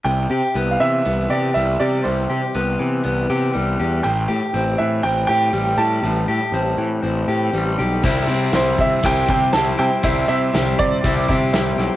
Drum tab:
CC |--------|--------|--------|--------|
HH |o-o-o-o-|o-o-o-o-|o-o-o-o-|o-o-o-o-|
SD |--------|--------|--------|--------|
BD |--------|--------|--------|--------|

CC |x-------|--------|
HH |-xxxxxxx|xxxxxxxx|
SD |--o---o-|--o---o-|
BD |o--ooo--|o--ooo--|